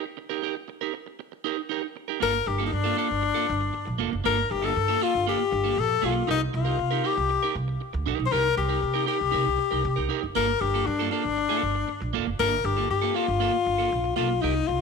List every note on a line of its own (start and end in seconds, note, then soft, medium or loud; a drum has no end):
0.04 muted clean electric guitar stroke soft
0.17 muted clean electric guitar stroke soft
0.29 0.41 D#4 medium
0.29 0.42 G4 medium
0.29 0.43 A#4 medium
0.42 0.55 D#4 medium
0.42 0.55 G4 medium
0.42 0.54 A#4 medium
0.55 muted clean electric guitar stroke soft
0.68 muted clean electric guitar stroke soft
0.81 0.93 D#4 medium
0.81 0.93 G4 medium
0.81 0.94 A#4 medium
0.94 muted clean electric guitar stroke soft
1.06 muted clean electric guitar stroke soft
1.19 muted clean electric guitar stroke soft
1.32 muted clean electric guitar stroke soft
1.44 1.60 D#4 medium
1.44 1.58 G4 medium
1.44 1.56 A#4 medium
1.57 muted clean electric guitar stroke soft
1.69 1.85 D#4 medium
1.69 1.83 G4 medium
1.69 1.82 A#4 medium
1.83 muted clean electric guitar stroke soft
1.96 muted clean electric guitar stroke soft
2.08 2.20 D#4 soft
2.08 2.21 G4 medium
2.08 2.20 A#4 soft
2.20 2.41 G1 medium
2.20 2.36 A#3 medium
2.20 2.34 F4 medium
2.20 2.32 A4 loud
2.20 2.49 A#4 loud
2.34 muted clean electric guitar stroke soft
2.46 2.66 G1 loud
2.46 2.66 G4 loud
2.46 muted clean electric guitar stroke soft
2.58 2.70 A#3 medium
2.58 2.71 F4 medium
2.58 2.71 A4 medium
2.66 2.75 D#4 medium
2.71 2.92 G2 medium
2.71 2.98 D4 loud
2.71 muted clean electric guitar stroke soft
2.84 2.95 A#3 medium
2.84 2.96 F4 medium
2.84 2.97 A4 medium
2.96 3.09 A#3 medium
2.96 3.96 D4 loud
2.96 3.09 F4 medium
2.96 3.08 A4 medium
3.09 3.30 G1 medium
3.09 muted clean electric guitar stroke soft
3.22 muted clean electric guitar stroke soft
3.34 3.46 A#3 medium
3.34 3.47 F4 medium
3.34 3.47 A4 medium
3.47 3.68 G1 loud
3.47 muted clean electric guitar stroke soft
3.61 muted clean electric guitar stroke soft
3.73 muted clean electric guitar stroke soft
3.85 3.97 A#1 medium
3.85 muted clean electric guitar stroke soft
3.98 4.09 F1 medium
3.98 4.14 A#3 medium
3.98 4.12 F4 medium
3.98 4.11 A4 medium
4.12 4.22 F#1 medium
4.12 muted clean electric guitar stroke soft
4.24 4.44 G1 loud
4.24 4.40 A#3 medium
4.24 4.37 F4 medium
4.24 4.36 A4 medium
4.24 4.52 A#4 loud
4.38 muted clean electric guitar stroke soft
4.50 4.70 G1 loud
4.50 4.66 G4 loud
4.50 muted clean electric guitar stroke soft
4.62 4.74 A#3 medium
4.62 4.75 F4 medium
4.62 4.75 A4 medium
4.62 5.05 A4 loud
4.76 4.95 G2 loud
4.76 muted clean electric guitar stroke soft
4.88 4.99 A#3 medium
4.88 5.00 F4 medium
4.88 5.01 A4 medium
5.00 5.13 A#3 medium
5.00 5.13 F4 medium
5.00 5.27 F4 loud
5.00 5.13 A4 medium
5.14 5.33 G1 medium
5.14 muted clean electric guitar stroke soft
5.27 5.42 A#3 loud
5.27 5.39 F4 loud
5.27 5.81 G4 loud
5.27 5.38 A4 loud
5.39 muted clean electric guitar stroke medium
5.51 5.71 G1 loud
5.51 muted clean electric guitar stroke medium
5.64 5.77 A#3 medium
5.64 5.77 F4 medium
5.64 5.76 A4 medium
5.77 5.96 A#1 loud
5.77 6.07 A4 loud
5.89 muted clean electric guitar stroke soft
6.02 6.22 B1 medium
6.02 6.22 A#3 medium
6.02 6.15 F4 medium
6.02 6.29 F4 loud
6.02 6.14 A4 loud
6.15 muted clean electric guitar stroke soft
6.27 6.47 C2 loud
6.27 6.43 D#4 medium
6.27 6.42 D#4 loud
6.27 6.41 G4 medium
6.27 6.40 A#4 medium
6.41 muted clean electric guitar stroke medium
6.53 6.73 C2 loud
6.53 7.08 F4 medium
6.53 muted clean electric guitar stroke medium
6.65 6.77 D#4 medium
6.65 6.78 G4 medium
6.65 6.77 A#4 medium
6.78 6.98 C3 loud
6.78 muted clean electric guitar stroke soft
6.91 7.03 D#4 medium
6.91 7.03 G4 medium
6.91 7.04 A#4 medium
7.04 7.16 D#4 medium
7.04 7.16 G4 medium
7.04 7.56 G4 loud
7.04 7.16 A#4 medium
7.17 7.36 C2 loud
7.17 muted clean electric guitar stroke soft
7.29 muted clean electric guitar stroke medium
7.43 7.54 D#4 medium
7.43 7.55 G4 medium
7.43 7.55 A#4 medium
7.55 7.74 C2 loud
7.55 muted clean electric guitar stroke soft
7.68 muted clean electric guitar stroke soft
7.81 muted clean electric guitar stroke soft
7.93 8.03 D2 medium
7.93 muted clean electric guitar stroke medium
8.06 8.19 A#1 medium
8.06 8.26 D#4 medium
8.06 8.19 G4 medium
8.06 8.18 A#4 medium
8.19 8.29 B1 medium
8.19 muted clean electric guitar stroke soft
8.26 8.34 C5 medium
8.31 8.51 C2 loud
8.31 8.47 D#4 medium
8.31 8.44 G4 medium
8.31 8.57 A#4 loud
8.31 8.43 A#4 medium
8.44 muted clean electric guitar stroke soft
8.56 8.76 C2 loud
8.56 9.05 G4 loud
8.56 muted clean electric guitar stroke soft
8.69 8.80 D#4 medium
8.69 8.81 G4 medium
8.69 8.81 A#4 medium
8.81 9.02 C3 loud
8.81 muted clean electric guitar stroke soft
8.94 9.05 D#4 medium
8.94 9.06 G4 medium
8.94 9.07 A#4 medium
9.06 9.19 D#4 medium
9.06 9.19 G4 medium
9.06 10.06 G4 loud
9.06 9.18 A#4 medium
9.19 9.30 C2 medium
9.19 muted clean electric guitar stroke soft
9.31 9.43 C3 loud
9.31 9.48 D#4 medium
9.31 9.45 G4 medium
9.31 9.44 A#4 loud
9.45 9.56 C2 medium
9.45 muted clean electric guitar stroke soft
9.58 muted clean electric guitar stroke soft
9.71 9.81 C2 medium
9.71 9.82 D#4 medium
9.71 9.83 G4 medium
9.71 9.83 A#4 medium
9.83 9.94 C3 loud
9.83 muted clean electric guitar stroke soft
9.96 10.07 C2 medium
9.96 10.08 D#4 soft
9.96 10.08 G4 medium
9.96 10.08 A#4 medium
10.09 10.25 D#4 medium
10.09 10.23 G4 medium
10.09 10.22 A#4 loud
10.23 10.32 F#1 medium
10.23 muted clean electric guitar stroke soft
10.35 10.55 G1 loud
10.35 10.50 A#3 medium
10.35 10.48 F4 medium
10.35 10.47 A4 medium
10.35 10.62 A#4 loud
10.48 muted clean electric guitar stroke soft
10.61 10.80 G1 loud
10.61 10.87 G4 loud
10.61 muted clean electric guitar stroke soft
10.74 10.86 A#3 soft
10.74 10.86 F4 medium
10.74 10.86 A4 medium
10.86 11.06 G2 loud
10.86 11.11 D4 loud
10.86 muted clean electric guitar stroke soft
10.99 11.10 A#3 medium
10.99 11.11 F4 medium
10.99 11.12 A4 medium
11.11 11.23 A#3 medium
11.11 12.09 D4 loud
11.11 11.24 F4 medium
11.11 11.23 A4 medium
11.24 11.44 G1 medium
11.24 muted clean electric guitar stroke soft
11.37 muted clean electric guitar stroke soft
11.49 11.62 A#3 medium
11.49 11.62 F4 medium
11.49 11.63 A4 medium
11.63 11.82 G1 medium
11.63 muted clean electric guitar stroke soft
11.75 muted clean electric guitar stroke medium
11.88 muted clean electric guitar stroke soft
12.01 12.11 A#1 loud
12.01 muted clean electric guitar stroke soft
12.13 12.23 F1 medium
12.13 12.29 A#3 medium
12.13 12.27 F4 medium
12.13 12.25 A4 loud
12.27 12.36 F#1 medium
12.27 muted clean electric guitar stroke soft
12.39 12.58 G1 loud
12.39 12.54 A#3 medium
12.39 12.52 F4 medium
12.39 12.51 A4 loud
12.39 12.67 A#4 loud
12.52 muted clean electric guitar stroke soft
12.64 12.83 G1 loud
12.64 12.90 G4 loud
12.64 muted clean electric guitar stroke soft
12.77 12.88 A#3 medium
12.77 12.89 F4 medium
12.77 12.89 A4 medium
12.89 13.09 G2 medium
12.89 13.17 G4 loud
12.89 muted clean electric guitar stroke soft
13.02 13.13 A#3 medium
13.02 13.15 F4 medium
13.02 13.15 A4 medium
13.14 13.27 A#3 medium
13.14 14.15 F4 loud
13.14 13.27 F4 medium
13.14 13.26 A4 medium
13.27 13.47 G1 medium
13.27 muted clean electric guitar stroke soft
13.40 13.56 A#3 loud
13.40 13.53 F4 medium
13.40 13.52 A4 loud
13.53 muted clean electric guitar stroke soft
13.65 13.85 G1 medium
13.65 muted clean electric guitar stroke soft
13.78 13.90 A#3 medium
13.78 13.91 F4 medium
13.78 13.90 A4 medium
13.92 14.11 A#1 loud
14.04 muted clean electric guitar stroke medium
14.16 14.43 B1 medium
14.16 14.32 A#3 medium
14.16 14.43 F4 loud
14.16 14.30 F4 medium
14.16 14.28 A4 loud
14.29 muted clean electric guitar stroke soft
14.42 14.62 C2 loud
14.42 14.69 D#4 loud
14.42 14.57 D#4 medium
14.42 14.55 G4 medium
14.42 14.54 A#4 medium
14.55 muted clean electric guitar stroke soft
14.67 14.81 C2 loud
14.67 14.81 F4 medium
14.67 muted clean electric guitar stroke soft